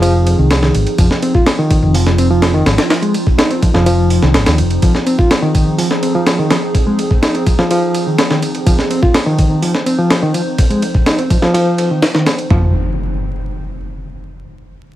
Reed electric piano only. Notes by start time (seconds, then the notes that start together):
0.02 F3
0.38 D#3
0.62 D#3
0.98 F3
1.23 C4
1.35 F4
1.59 D#3
1.95 F3
2.18 C4
2.30 F3
2.54 D#3
2.66 F3
3.02 G#3
3.38 D#4
3.50 C4
3.62 F3
3.74 F3
3.86 F3
4.23 D#3
4.47 D#3
4.83 F3
5.06 C4
5.18 F4
5.42 D#3
5.78 F3
6.03 C4
6.15 F3
6.39 D#3
6.51 F3
6.87 G#3
7.22 D#4
7.35 C4
7.46 F3
7.59 F3
7.71 F3
8.07 D#3
8.30 D#3
8.66 F3
8.90 C4
9.02 F4
9.26 D#3
9.62 F3
9.86 C4
9.98 F3
10.22 D#3
10.34 F3
10.70 G#3
11.06 D#4
11.18 C4
11.30 F3
11.42 F3
11.54 F3
11.91 D#3
12.15 D#3
12.51 F3